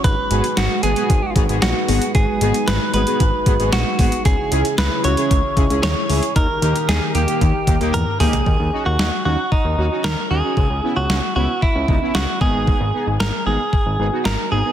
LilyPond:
<<
  \new Staff \with { instrumentName = "Clean electric guitar" } { \time 4/4 \key gis \minor \tempo 4 = 114 b'4 fis'8 gis'4 r8 fis'4 | gis'4 b'8 b'4. fis'4 | gis'4 b'8 cis''4. cis''4 | ais'4 gis'8 g'4. ais'8 gis'8~ |
gis'8. fis'8. fis'8 dis'4 ais'8 gis'8~ | gis'8. fis'8. fis'8 e'4 fis'8 gis'8~ | gis'4 ais'8 gis'4. ais'8 gis'8 | }
  \new Staff \with { instrumentName = "Analog synth pad" } { \time 4/4 \key gis \minor <gis dis' fis' b'>1~ | <gis dis' fis' b'>1 | <cis cis' e' gis'>1 | <dis dis' g' ais'>1 |
r1 | r1 | r1 | }
  \new Staff \with { instrumentName = "Analog polysynth" } { \time 4/4 \key gis \minor r8 <b fis' gis'>16 r8. <b fis' gis'>16 <b fis' gis'>16 r8 <b fis' gis'>16 <b fis' gis'>16 r8 <b fis' gis'>16 r16 | r8 <b fis' gis'>16 r8. <b fis' gis'>16 <b fis' gis'>16 r8 <b fis' gis'>16 <b fis' gis'>16 r8 <b fis' gis'>16 r16 | r8 <cis' e' gis'>16 r8. <cis' e' fis'>16 <cis' e' gis'>16 r8 <cis' e' gis'>16 <cis' e' gis'>16 r8 <cis' e' gis'>16 r16 | r8 <ais dis' g'>16 r8. <ais dis' g'>16 <ais dis' g'>16 r8 <ais dis' g'>16 <ais dis' g'>16 r8 <ais dis' g'>16 r16 |
r8 <cis' dis' fis'>16 r8. <cis' dis' fis'>16 r8. <cis' dis' fis'>16 <cis' dis' fis'>16 r8 <cis' dis' fis'>16 <cis' dis' fis'>16 | r8 <b cis' e'>16 r8. <b cis' e'>16 r8. <b cis' dis'>16 <b cis' e'>16 r8 <b dis' gis'>8~ | <b dis' gis'>16 r16 <b dis' gis'>16 r8. <b dis' gis'>16 r8. <b dis' gis'>16 <b dis' fis'>16 r8 <b dis' gis'>16 <b dis' gis'>16 | }
  \new Staff \with { instrumentName = "Analog synth bass" } { \clef bass \time 4/4 \key gis \minor gis,,16 r16 gis,,16 r16 gis,,16 r16 gis,,16 r16 gis,,16 r16 gis,,16 gis,,16 ais,,16 r16 gis,,16 r16 | gis,,16 r16 gis,,16 r16 gis,,16 r16 gis,,16 r16 gis,,16 r16 gis,,16 gis,,16 ais,,16 r16 gis,,16 r16 | cis,16 r16 cis,16 r16 cis,16 r16 cis,16 r16 cis,16 r16 cis,16 cis,16 dis,16 r16 cis,16 r16 | dis,16 r16 dis,16 r16 dis,16 r16 dis,16 r16 dis,16 r16 dis,16 dis,16 e,16 r16 dis,16 r16 |
dis,16 dis,16 r16 dis,16 dis,16 r16 dis,16 r8 dis,16 dis,16 r16 dis,16 r16 dis,16 r16 | cis,16 cis,16 r16 cis,16 cis,16 r16 cis,16 r8 cis,16 cis,16 r16 cis,16 r16 gis,,8~ | gis,,16 gis,,16 r16 gis,,16 gis,,16 r16 gis,,16 r8 gis,,16 gis,,16 r16 gis,,16 r16 gis,,16 r16 | }
  \new DrumStaff \with { instrumentName = "Drums" } \drummode { \time 4/4 <hh bd>8 hh16 hh16 <hh sn>8 hh16 hh16 <hh bd>8 <hh bd>16 hh16 <hh sn>8 hho16 hh16 | <hh bd>8 hh16 hh16 <hh sn>8 hh16 hh16 <hh bd>8 <hh bd>16 hh16 <hh sn>8 <hho bd>16 hh16 | <hh bd>8 hh16 hh16 <hh sn>8 hh16 hh16 <hh bd>8 <hh bd>16 hh16 <hh sn>8 hho16 hh16 | <hh bd>8 hh16 hh16 <hh sn>8 hh16 hh16 <hh bd>8 <hh bd>16 hh16 <hh tommh>8 <hho toml>16 <hh tomfh>16 |
bd4 sn4 bd4 sn4 | bd4 sn4 bd8 bd8 sn8 bd8 | bd4 sn4 bd4 sn4 | }
>>